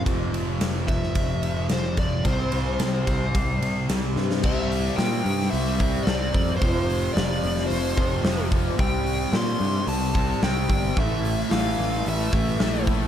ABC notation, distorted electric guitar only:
X:1
M:4/4
L:1/8
Q:1/4=110
K:Cmix
V:1 name="Distorted electric guitar" clef=bass
[F,,C,F,]8 | [C,G,C]8 | [C,G,C]2 [C,G,C]3 [G,C] [C,G,C] [G,C] | [F,,C,F,]2 [F,,C,F,]3 [C,F,] [F,,C,F,] [C,F,] |
[C,G,C]2 [C,G,C]3 [G,C] [C,G,C] [G,C] | [A,,E,A,]2 [A,,E,A,]3 [E,A,] [A,,E,A,] [E,A,] |]